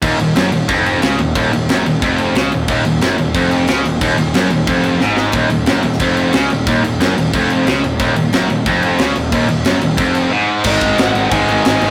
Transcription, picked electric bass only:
\new Staff \with { instrumentName = "Picked electric bass" } { \clef bass \time 4/4 \key ees \minor \tempo 4 = 181 ees,,8 ees,,8 ges,,8 ees,,8 f,,4 des,8 ees,,8 | ees,,8 ees,,8 ges,,8 ees,,8 f,,4 des,8 ees,,8 | ees,,8 ees,,8 ges,,8 ees,,8 f,,4 des,8 ees,,8 | ees,,8 ees,,8 ges,,8 ees,,8 f,,4 aes,,4 |
ees,,8 ees,,8 ges,,8 ees,,8 f,,4 des,8 ees,,8 | ees,,8 ees,,8 ges,,8 ees,,8 f,,4 des,8 ees,,8 | ees,,8 ees,,8 ges,,8 ees,,8 f,,4 des,8 ees,,8 | ees,,8 ees,,8 ges,,8 ees,,8 f,,4 r4 |
aes,,8 aes,,8 aes,,8 aes,,8 aes,,8 aes,,8 aes,,8 aes,,8 | }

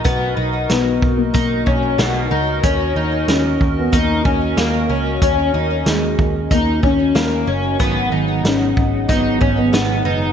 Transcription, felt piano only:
\new Staff \with { instrumentName = "Felt piano" } { \time 4/4 \key dis \phrygian \tempo 4 = 93 r4 b8. ais16 ais4. r8 | r4 cis'8. b16 ais4 ais8. r16 | r4 gis4 ais8 cis'4 r8 | r4 cis'4 b8. b16 dis'8. r16 | }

